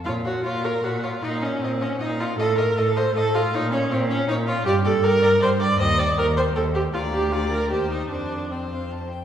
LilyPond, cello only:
\new Staff \with { instrumentName = "Cello" } { \clef bass \time 3/4 \key bes \minor \tempo 4 = 156 bes,4 bes,4 bes,4 | bes,4 bes,4 bes,4 | a,4 a,4 a,4 | bes,4 bes,4 bes,4 |
\key c \dorian g,4 g,4 g,4 | ees,4 ees,4 ees,4 | d,2 ees,4 | f,2~ f,8 r8 | }